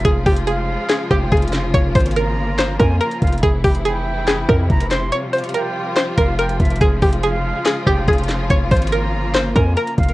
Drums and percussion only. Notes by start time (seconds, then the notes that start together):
0.05 kick, closed hi-hat
0.26 kick, closed hi-hat, open hi-hat
0.37 closed hi-hat
0.47 closed hi-hat
0.89 snare, clap, closed hi-hat
1.11 kick, cross-stick
1.32 kick, closed hi-hat
1.37 closed hi-hat
1.42 closed hi-hat
1.48 closed hi-hat
1.53 snare, clap, closed hi-hat
1.74 kick, closed hi-hat
1.95 kick, closed hi-hat, open hi-hat
2.00 closed hi-hat
2.06 closed hi-hat
2.11 closed hi-hat
2.16 closed hi-hat
2.58 snare, clap, closed hi-hat
2.80 kick, closed hi-hat
3.01 closed hi-hat
3.11 closed hi-hat
3.22 kick, closed hi-hat
3.27 closed hi-hat
3.32 closed hi-hat
3.38 closed hi-hat
3.43 kick, closed hi-hat
3.64 kick, closed hi-hat, open hi-hat
3.75 closed hi-hat
3.85 closed hi-hat
4.28 snare, clap, closed hi-hat
4.49 kick, cross-stick
4.70 kick, closed hi-hat
4.80 closed hi-hat
4.91 snare, clap, closed hi-hat
5.12 closed hi-hat
5.33 closed hi-hat, open hi-hat
5.38 closed hi-hat
5.44 closed hi-hat
5.49 closed hi-hat
5.54 closed hi-hat
5.97 snare, clap, closed hi-hat
6.18 kick, closed hi-hat
6.39 closed hi-hat
6.49 closed hi-hat
6.60 kick, closed hi-hat
6.65 closed hi-hat
6.71 closed hi-hat
6.76 closed hi-hat
6.81 kick, closed hi-hat
7.02 kick, closed hi-hat, open hi-hat
7.13 closed hi-hat
7.23 closed hi-hat
7.66 snare, clap, closed hi-hat
7.87 kick, cross-stick
8.08 kick, closed hi-hat
8.13 closed hi-hat
8.18 closed hi-hat
8.24 closed hi-hat
8.29 snare, clap, closed hi-hat
8.50 kick, closed hi-hat
8.71 kick, closed hi-hat, open hi-hat
8.76 closed hi-hat
8.82 closed hi-hat
8.87 closed hi-hat
8.92 closed hi-hat
9.35 snare, clap, closed hi-hat
9.56 kick, closed hi-hat
9.77 closed hi-hat
9.87 closed hi-hat
9.98 kick, closed hi-hat
10.03 closed hi-hat
10.08 closed hi-hat